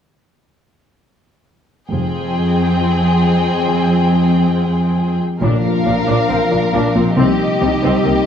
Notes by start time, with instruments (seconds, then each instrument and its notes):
1.90 double bass section F1, cello section F2, harp F3, viola section C4, violin section G#4 G5
2.15 harp C5
2.37 harp G#3
2.58 harp G5
2.80 harp F4
3.03 harp C5
3.23 harp G#3
3.45 harp G#4
3.66 harp F3
3.87 harp C5
4.10 harp G#3
4.53 harp F4
4.75 harp C5
4.97 harp G#3
5.20 harp G4
5.41 double bass section A#1, cello section A#2, timpani A#2, harp A#2, french horn section F3 D4, viola section D4, violin section A#4 F5
5.65 harp F4
5.86 double bass section A#1, cello section A#2, harp A#3, viola section D4
6.07 double bass section A#1, cello section A#2, viola section D4, harp F4
6.29 double bass section A#1, cello section A#2, harp F3, viola section C4
6.51 double bass section A#1, cello section A#2, viola section D4, harp F4
6.73 double bass section A#1, cello section A#2, harp A#3, viola section D4
6.95 double bass section A#1, cello section A#2, viola section C4, harp F4
7.16 double bass section C2, cello section C3, harp C3, french horn section G3 D#4, viola section C4, violin section G4 D#5
7.40 harp D#4
7.60 double bass section C2, cello section C3, harp G3, viola section C4
7.82 double bass section C2, cello section C3, viola section C4, harp D#4
8.04 double bass section C2, cello section C3, viola section A#3, harp C4